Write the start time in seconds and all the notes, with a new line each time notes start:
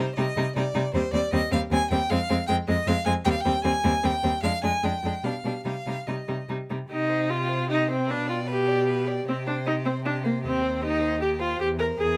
Already playing: C5
0.16 C3 G3 D#4 D#5
0.36 C3 G3 D#4
0.56 C3 G3 D#4 D5
0.75 C3 G3 D#4
0.94 D#2 G3 C4 C5
1.12 D#2 G3 C4 D5
1.33 D#2 G3 C4 D#5
1.51 D#2 G3 C4 F5
1.71 D#2 G3 C4 G#5
1.91 D#2 G3 C4 G5
2.10 F2 G#3 C4 F5
2.30 F2 G#3 C4
2.47 F2 G#3 C4 G5
2.67 F2 G#3 C4 D#5
2.87 F2 G#3 C4 F5
3.06 F2 G#3 C4 G#5
3.25 D#2 G3 C4 G5
3.31 F5
3.41 G5
3.45 D#2 G3 C4
3.64 D#2 G3 C4 G#5
3.84 D#2 G3 C4
4.03 D#2 G3 C4 G5
4.24 D#2 G3 C4
4.43 F2 G#3 D4 F5
4.63 F2 G#3 D4 G#5
4.83 F2 G#3 D4 G5
5.03 F2 G#3 D4
5.24 B2 G3 D4 F5
5.44 B2 G3 D4
5.65 C3 G3 D#4 F5
5.86 C3 G3 D#4
6.07 C3 G3 D#4 D#5
6.28 C3 G3 D#4
6.49 C3 G3 D#4
6.70 C3 G3 D#4
6.89 C3 D#4 G4 D#5
7.09 C5 G5
7.29 F4 G4 D#5
7.48 C5 G5
7.68 D#4 G4 D#5
7.88 C4 C5 G5
8.08 B2 D4 B4 F5
8.27 F4 D5 G5
8.47 G4 B4 F5
8.68 D5 G5
8.87 B4 F5
9.07 D5 G5
9.26 C3 C4 G4 D#5
9.45 D4 C5 G5
9.66 D#4 G4 D#5
9.85 C4 C5 G5
10.04 D4 G4 D#5
10.24 A#3 C5 G5
10.43 D#2 C4 G4 D#5
10.62 C5 G5
10.81 D#4 G4 D#5
11.01 C5 G5
11.19 G4 D#5
11.39 F4 C5 G5
11.60 E2 G4
11.77 A#4 C5
11.98 E2 G#4